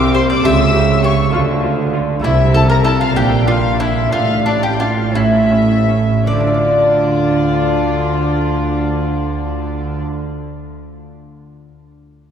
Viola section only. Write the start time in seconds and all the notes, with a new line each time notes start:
0.15 G4
0.44 G4
0.74 G4
1.04 G4
1.33 F4
1.63 F4
1.93 F4
2.23 E4
2.54 E4
2.85 E4
3.15 D4
3.47 D4
3.79 D4
4.12 D4
4.46 D4
4.80 D4
5.15 C#4
5.52 C#4
5.88 C#4
6.27 F4